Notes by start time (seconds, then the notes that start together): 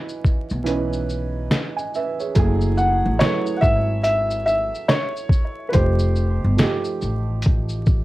Already playing: E3 C#4 D#4 B4
0.09 shaker
0.24 kick, shaker
0.50 B1, shaker
0.64 E3 C#4 D#4 B4, closed hi-hat, shaker
0.93 shaker
1.09 shaker
1.51 snare, closed hi-hat, shaker
1.76 D#5 G#5, shaker
1.94 B4 E5, shaker
2.20 G#4 C#5, shaker
2.35 F#1 F#3 A3 E4, kick, closed hi-hat, shaker
2.39 G#4
2.61 shaker
2.77 F#5, shaker
3.06 A1
3.19 F#3 A3 E4 C#5, snare, closed hi-hat, shaker
3.24 B4
3.46 shaker
3.57 F#5
3.61 G#1 E5, kick, shaker
4.03 E5, closed hi-hat, shaker
4.30 shaker
4.46 E5, shaker
4.75 shaker
4.88 C#5, snare, closed hi-hat, shaker
5.17 shaker
5.29 kick, shaker
5.69 F3 B4
5.73 F1 A3 D#4 G4 C5, kick, closed hi-hat, shaker
5.99 shaker
6.16 shaker
6.44 G1
6.57 F3 A3 D#4, snare, closed hi-hat, shaker
6.61 G4
6.84 shaker
7.01 A1, shaker
7.42 kick, closed hi-hat, shaker
7.69 shaker
7.86 kick, shaker